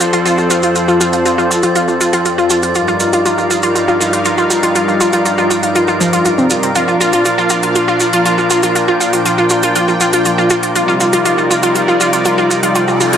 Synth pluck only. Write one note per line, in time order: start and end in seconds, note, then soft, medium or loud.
0.00 0.08 F4 medium
0.13 0.24 F4 loud
0.26 0.36 F4 loud
0.38 0.45 F4 medium
0.51 0.61 F4 loud
0.63 0.74 F4 medium
0.76 0.83 F4 medium
0.88 0.99 F4 loud
1.01 1.11 F4 loud
1.13 1.20 F4 medium
1.26 1.36 F4 medium
1.38 1.49 F4 loud
1.51 1.58 F4 medium
1.63 1.74 F4 loud
1.76 1.86 F4 loud
1.88 1.95 F4 medium
2.01 2.11 F4 loud
2.13 2.24 F4 loud
2.26 2.33 F4 medium
2.38 2.49 F4 loud
2.50 2.61 F4 loud
2.63 2.70 F4 medium
2.75 2.86 F4 loud
2.88 2.99 F4 loud
3.01 3.08 F4 medium
3.13 3.24 F4 loud
3.26 3.36 F4 medium
3.38 3.45 F4 medium
3.51 3.61 F4 medium
3.63 3.74 F4 loud
3.75 3.83 F4 medium
3.88 3.99 F4 loud
4.00 4.11 F4 loud
4.13 4.20 F4 medium
4.25 4.36 F4 loud
4.38 4.49 F4 loud
4.50 4.58 F4 medium
4.63 4.74 F4 loud
4.75 4.86 F4 loud
4.88 4.95 F4 medium
5.01 5.11 F4 loud
5.13 5.24 F4 loud
5.25 5.33 F4 medium
5.38 5.49 F4 loud
5.50 5.61 F4 loud
5.63 5.70 F4 medium
5.75 5.86 F4 loud
5.88 5.98 F4 loud
6.00 6.11 F3 loud
6.13 6.24 F4 loud
6.25 6.33 F4 medium
6.38 6.45 C4 medium
6.50 6.58 F4 medium
6.63 6.67 C4 medium
6.75 6.86 F4 loud
6.88 6.95 F4 medium
7.00 7.11 F4 loud
7.13 7.24 F4 loud
7.25 7.33 F4 medium
7.38 7.49 F4 loud
7.50 7.61 F4 medium
7.63 7.70 F4 medium
7.76 7.86 F4 loud
7.88 7.99 F4 loud
8.01 8.08 F4 medium
8.13 8.24 F4 loud
8.26 8.36 F4 loud
8.38 8.45 F4 medium
8.51 8.61 F4 loud
8.63 8.74 F4 loud
8.76 8.83 F4 medium
8.88 8.99 F4 loud
9.00 9.11 F4 loud
9.13 9.20 F4 medium
9.26 9.36 F4 medium
9.38 9.49 F4 loud
9.51 9.58 F4 medium
9.63 9.74 F4 loud
9.76 9.86 F4 loud
9.88 9.95 F4 medium
10.01 10.11 F4 loud
10.13 10.24 F4 loud
10.26 10.33 F4 medium
10.38 10.49 F4 loud
10.50 10.61 F4 loud
10.63 10.70 F4 medium
10.75 10.86 F4 loud
10.88 10.99 F4 loud
11.00 11.08 F4 medium
11.13 11.24 F4 loud
11.25 11.36 F4 loud
11.38 11.45 F4 medium
11.50 11.61 F4 medium
11.63 11.74 F4 loud
11.76 11.83 F4 medium
11.88 11.99 F4 loud
12.01 12.11 F4 loud
12.13 12.20 F4 medium
12.25 12.36 F4 loud
12.38 12.49 F4 loud
12.51 12.58 F4 medium
12.63 12.74 F4 loud
12.76 12.86 F4 loud
12.88 12.95 F4 medium
13.00 13.11 F4 loud
13.13 13.17 F4 loud